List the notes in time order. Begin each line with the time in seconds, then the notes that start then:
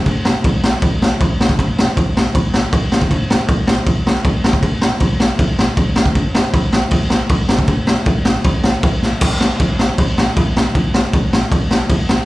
0.06 kick, crash
0.25 snare
0.44 kick, crash
0.64 snare
0.82 kick, crash
1.02 snare
1.21 kick, crash
1.41 snare
1.49 kick
1.59 kick, crash
1.79 snare
1.97 kick, crash
2.17 snare
2.35 kick, crash
2.54 snare
2.73 kick, crash
2.92 snare
3.02 kick
3.11 kick, crash
3.30 snare
3.49 kick, crash
3.67 snare
3.86 kick, crash
4.07 snare
4.25 kick, crash
4.44 snare
4.53 kick
4.63 kick, crash
4.82 snare
5.00 kick, crash
5.20 snare
5.39 kick, crash
5.59 snare
5.77 kick, crash
5.96 snare
6.06 kick
6.15 kick, crash
6.35 snare
6.53 kick, crash
6.73 snare
6.91 kick, crash
7.10 snare
7.29 kick, crash
7.49 snare
7.59 kick
7.68 kick, crash
7.87 snare
8.06 kick, crash
8.25 snare
8.44 kick, crash
8.64 snare
8.83 kick, crash
9.02 snare
9.21 kick, crash
9.41 snare
9.60 kick, crash
9.79 snare
9.98 kick, crash
10.18 snare
10.37 kick, crash
10.57 snare
10.75 kick, crash
10.94 snare
11.13 kick, crash
11.33 snare
11.52 kick, crash
11.71 snare
11.89 kick, crash
12.09 snare